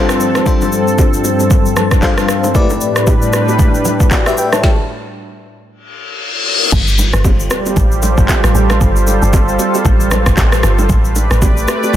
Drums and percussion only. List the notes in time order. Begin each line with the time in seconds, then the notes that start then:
0.09 cross-stick, shaker
0.20 shaker
0.35 cross-stick, low bongo, shaker
0.46 kick, low conga, shaker
0.61 low bongo, shaker
0.72 shaker
0.88 shaker
0.98 kick, high bongo, shaker
1.14 shaker
1.24 high bongo, shaker
1.40 high bongo, shaker
1.50 kick, low conga, shaker
1.66 shaker
1.76 cross-stick, low bongo, low conga, shaker
1.91 kick, cross-stick, shaker
2.02 kick, clap, high bongo, shaker
2.18 cross-stick, shaker
2.29 cross-stick, shaker
2.44 low bongo, shaker
2.55 kick, low conga, shaker
2.70 low bongo, shaker
2.81 shaker
2.96 cross-stick, shaker
3.07 kick, high bongo, shaker
3.22 shaker
3.33 cross-stick, high bongo, shaker
3.48 high bongo, shaker
3.59 kick, low conga, shaker
3.74 shaker
3.85 low bongo, low conga, shaker
4.00 kick, shaker
4.11 kick, clap, high bongo, shaker
4.26 cross-stick, shaker
4.38 shaker
4.53 cross-stick, low bongo, shaker
4.64 kick, snare
6.72 kick, crash, low conga, shaker
6.87 shaker
6.98 low bongo, shaker
7.13 cross-stick, shaker
7.25 kick, high bongo, shaker
7.40 shaker
7.50 cross-stick, high bongo, shaker
7.66 high bongo, shaker
7.76 kick, low conga, shaker
7.92 shaker
8.03 low bongo, low conga, shaker
8.18 kick, shaker
8.29 kick, clap, high bongo, shaker
8.44 cross-stick, shaker
8.55 shaker
8.70 cross-stick, low bongo, shaker
8.81 kick, low conga, shaker
8.96 shaker
9.07 low bongo, shaker
9.22 shaker
9.33 kick, high bongo, shaker
9.48 shaker
9.59 high bongo, shaker
9.74 high bongo, shaker
9.85 kick, low conga, shaker
10.00 shaker
10.11 cross-stick, low bongo, low conga, shaker
10.26 kick, cross-stick, shaker
10.37 kick, clap, high bongo, shaker
10.52 cross-stick, shaker
10.63 cross-stick, shaker
10.79 low bongo, shaker
10.89 kick, low conga, shaker
11.05 shaker
11.16 low bongo, shaker
11.31 cross-stick, shaker
11.42 kick, high bongo, shaker
11.57 shaker
11.68 cross-stick, high bongo, shaker
11.83 high bongo, shaker
11.93 low conga